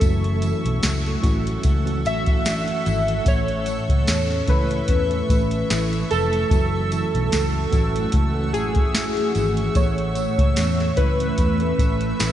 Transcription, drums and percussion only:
0.01 kick loud
0.01 closed hi-hat medium
0.01 tambourine soft
0.24 closed hi-hat soft
0.42 closed hi-hat medium
0.42 tambourine soft
0.66 closed hi-hat medium
0.83 snare loud
0.83 closed hi-hat medium
0.83 tambourine medium
1.06 snare soft
1.24 kick medium
1.24 closed hi-hat medium
1.24 tambourine soft
1.47 closed hi-hat medium
1.63 kick medium
1.63 closed hi-hat medium
1.63 tambourine soft
1.87 closed hi-hat soft
2.05 closed hi-hat medium
2.05 tambourine soft
2.26 kick medium
2.26 closed hi-hat soft
2.45 snare loud
2.45 closed hi-hat medium
2.45 tambourine medium
2.68 closed hi-hat soft
2.86 closed hi-hat medium
2.86 tambourine soft
3.08 closed hi-hat soft
3.26 kick loud
3.26 closed hi-hat medium
3.26 tambourine medium
3.48 closed hi-hat soft
3.66 closed hi-hat medium
3.66 tambourine soft
3.89 kick medium
3.89 closed hi-hat medium
4.07 snare loud
4.07 closed hi-hat medium
4.07 tambourine medium
4.31 snare soft
4.47 kick medium
4.47 closed hi-hat medium
4.71 closed hi-hat medium
4.88 kick medium
4.88 closed hi-hat loud
5.11 closed hi-hat soft
5.29 kick loud
5.29 closed hi-hat medium
5.29 tambourine soft
5.51 closed hi-hat soft
5.70 snare loud
5.70 closed hi-hat medium
5.70 tambourine medium
5.93 closed hi-hat soft
6.11 closed hi-hat medium
6.11 tambourine medium
6.33 closed hi-hat medium
6.51 kick loud
6.51 closed hi-hat medium
6.51 tambourine soft
6.92 closed hi-hat medium
6.92 tambourine medium
7.15 closed hi-hat medium
7.32 snare loud
7.32 closed hi-hat medium
7.32 tambourine medium
7.73 kick medium
7.73 closed hi-hat medium
7.73 tambourine soft
7.96 closed hi-hat medium
8.12 kick medium
8.12 closed hi-hat loud
8.54 closed hi-hat medium
8.54 tambourine soft
8.75 kick medium
8.75 closed hi-hat soft
8.95 snare loud
8.95 closed hi-hat medium
8.95 tambourine medium
9.17 closed hi-hat soft
9.35 closed hi-hat medium
9.35 tambourine medium
9.57 closed hi-hat soft
9.75 kick loud
9.75 closed hi-hat medium
9.75 tambourine medium
9.98 closed hi-hat soft
10.15 closed hi-hat medium
10.15 tambourine soft
10.38 kick medium
10.38 closed hi-hat medium
10.56 snare loud
10.56 closed hi-hat medium
10.56 tambourine medium
10.80 snare soft
10.97 kick medium
10.97 closed hi-hat medium
11.20 closed hi-hat medium
11.38 kick medium
11.38 closed hi-hat loud
11.38 tambourine soft
11.60 closed hi-hat soft
11.79 kick medium
11.79 closed hi-hat medium
11.79 tambourine soft
12.01 closed hi-hat soft
12.20 snare loud
12.20 closed hi-hat medium
12.20 tambourine medium

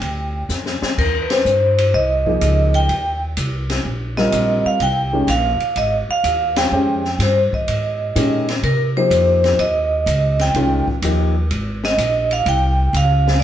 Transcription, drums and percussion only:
0.01 ride soft
0.49 snare soft
0.49 hi-hat pedal soft
0.66 snare soft
0.82 snare medium
0.98 kick medium
0.98 crash medium
1.30 snare medium
1.30 ride medium
1.46 hi-hat pedal soft
1.78 ride medium
2.26 kick soft
2.41 hi-hat pedal medium
2.41 ride medium
2.74 ride soft
2.89 ride soft
3.37 hi-hat pedal soft
3.37 ride medium
3.70 snare medium
3.70 ride medium
4.17 snare soft
4.32 hi-hat pedal soft
4.32 ride medium
4.80 ride soft
5.28 hi-hat pedal medium
5.28 ride medium
5.60 ride soft
5.76 ride soft
6.24 hi-hat pedal medium
6.24 ride medium
6.56 snare medium
6.56 ride medium
7.04 snare soft
7.20 snare soft
7.20 hi-hat pedal soft
7.20 ride medium
7.53 kick soft
7.68 ride medium
8.16 hi-hat pedal medium
8.16 ride medium
8.48 snare soft
8.48 ride soft
8.63 ride soft
9.11 hi-hat pedal soft
9.11 ride medium
9.44 snare soft
9.44 ride soft
9.59 ride medium
10.07 hi-hat pedal medium
10.07 ride medium
10.39 snare soft
10.39 ride soft
10.54 ride soft
10.88 kick medium
11.02 hi-hat pedal medium
11.02 ride medium
11.51 ride medium
11.84 snare medium
11.98 hi-hat pedal medium
11.98 ride medium
12.31 ride soft
12.46 ride medium
12.94 hi-hat pedal medium
12.94 ride medium
13.27 snare medium

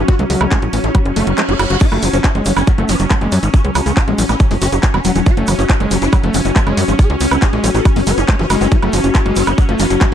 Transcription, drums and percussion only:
0.08 kick loud
0.08 closed hi-hat loud
0.19 closed hi-hat medium
0.30 open hi-hat loud
0.41 closed hi-hat medium
0.41 high woodblock medium
0.52 kick loud
0.52 clap loud
0.52 closed hi-hat medium
0.62 closed hi-hat medium
0.73 open hi-hat medium
0.84 closed hi-hat medium
0.95 kick loud
0.95 closed hi-hat loud
0.95 high woodblock soft
1.06 closed hi-hat medium
1.16 open hi-hat loud
1.27 closed hi-hat medium
1.38 clap loud
1.38 closed hi-hat medium
1.49 closed hi-hat medium
1.59 open hi-hat medium
1.59 high woodblock medium
1.70 closed hi-hat medium
1.81 kick loud
1.81 closed hi-hat loud
1.81 crash loud
1.81 shaker soft
1.92 closed hi-hat medium
1.92 high woodblock soft
2.02 open hi-hat loud
2.02 shaker medium
2.13 closed hi-hat medium
2.13 shaker medium
2.24 kick loud
2.24 clap loud
2.24 closed hi-hat loud
2.24 shaker soft
2.35 closed hi-hat medium
2.46 open hi-hat loud
2.46 shaker medium
2.57 closed hi-hat medium
2.57 high woodblock medium
2.57 shaker medium
2.67 kick loud
2.67 closed hi-hat loud
2.67 shaker soft
2.78 closed hi-hat medium
2.89 open hi-hat loud
2.89 shaker medium
2.99 closed hi-hat medium
2.99 shaker medium
3.10 kick loud
3.10 clap loud
3.10 closed hi-hat loud
3.10 high woodblock soft
3.10 shaker soft
3.21 closed hi-hat medium
3.32 open hi-hat loud
3.32 shaker medium
3.43 closed hi-hat medium
3.43 shaker soft
3.54 kick loud
3.54 closed hi-hat loud
3.54 shaker soft
3.65 closed hi-hat medium
3.75 open hi-hat loud
3.75 high woodblock medium
3.75 shaker medium
3.86 closed hi-hat medium
3.86 shaker medium
3.97 kick loud
3.97 clap loud
3.97 closed hi-hat medium
3.97 shaker soft
4.08 closed hi-hat medium
4.18 open hi-hat loud
4.18 shaker loud
4.29 closed hi-hat medium
4.29 high woodblock soft
4.29 shaker medium
4.39 kick loud
4.39 closed hi-hat medium
4.39 shaker soft
4.51 open hi-hat medium
4.62 open hi-hat loud
4.62 shaker medium
4.72 closed hi-hat medium
4.72 shaker medium
4.83 kick loud
4.83 clap loud
4.83 closed hi-hat medium
4.83 shaker soft
4.94 closed hi-hat medium
4.94 high woodblock medium
5.05 open hi-hat loud
5.05 shaker medium
5.15 closed hi-hat medium
5.15 shaker medium
5.26 kick loud
5.26 closed hi-hat medium
5.26 shaker soft
5.37 closed hi-hat medium
5.47 open hi-hat loud
5.47 high woodblock soft
5.47 shaker loud
5.59 closed hi-hat medium
5.59 shaker medium
5.70 kick loud
5.70 clap loud
5.70 closed hi-hat medium
5.70 shaker soft
5.80 closed hi-hat medium
5.91 open hi-hat loud
5.91 shaker medium
6.02 closed hi-hat medium
6.02 shaker medium
6.13 kick loud
6.13 closed hi-hat medium
6.13 high woodblock medium
6.13 shaker soft
6.24 closed hi-hat medium
6.34 open hi-hat loud
6.34 shaker loud
6.45 closed hi-hat medium
6.45 shaker medium
6.56 kick loud
6.56 clap loud
6.56 closed hi-hat medium
6.56 shaker soft
6.67 closed hi-hat medium
6.67 high woodblock soft
6.77 open hi-hat loud
6.77 shaker medium
6.88 closed hi-hat medium
6.88 shaker medium
6.99 kick loud
6.99 closed hi-hat medium
6.99 shaker soft
7.10 closed hi-hat soft
7.20 open hi-hat loud
7.20 shaker medium
7.31 high woodblock medium
7.31 shaker medium
7.42 kick loud
7.42 clap loud
7.42 closed hi-hat medium
7.42 shaker soft
7.53 closed hi-hat soft
7.64 open hi-hat loud
7.64 shaker loud
7.75 closed hi-hat medium
7.75 shaker medium
7.85 kick loud
7.85 closed hi-hat medium
7.85 high woodblock soft
7.85 shaker soft
7.96 open hi-hat medium
8.07 open hi-hat loud
8.07 shaker loud
8.18 closed hi-hat soft
8.18 shaker soft
8.28 kick loud
8.28 clap loud
8.28 closed hi-hat medium
8.28 shaker soft
8.39 closed hi-hat medium
8.50 open hi-hat loud
8.50 high woodblock medium
8.50 shaker loud
8.61 closed hi-hat soft
8.61 shaker medium
8.71 kick loud
8.71 closed hi-hat medium
8.71 shaker soft
8.82 closed hi-hat medium
8.82 high woodblock soft
8.93 open hi-hat loud
8.93 shaker loud
9.04 closed hi-hat medium
9.04 shaker medium
9.15 kick loud
9.15 clap loud
9.15 closed hi-hat medium
9.15 shaker soft
9.26 closed hi-hat soft
9.36 open hi-hat loud
9.36 shaker medium
9.47 high woodblock medium
9.47 shaker medium
9.58 kick loud
9.58 closed hi-hat medium
9.58 shaker soft
9.69 closed hi-hat medium
9.79 open hi-hat loud
9.79 shaker loud
9.90 closed hi-hat medium
9.90 shaker medium
10.01 kick loud
10.01 clap loud
10.01 closed hi-hat medium
10.01 high woodblock soft
10.01 shaker soft

